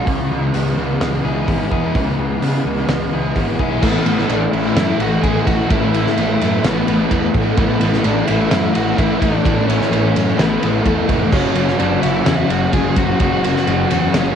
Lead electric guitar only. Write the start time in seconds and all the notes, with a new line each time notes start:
3.83 B3
4.30 D4
4.53 E4
5.01 F#4
5.23 G#4
5.47 F#4
5.71 E4
6.66 B3
7.58 B3
8.04 D4
8.26 E4
8.51 E4
8.73 F#4
8.96 E4
9.19 D4
9.67 C#4
10.37 B3
10.87 A3
11.32 C#4
11.79 D4
12.02 E4
12.51 F#4
12.74 G#4
12.98 F#4
13.21 F#4
14.16 C#4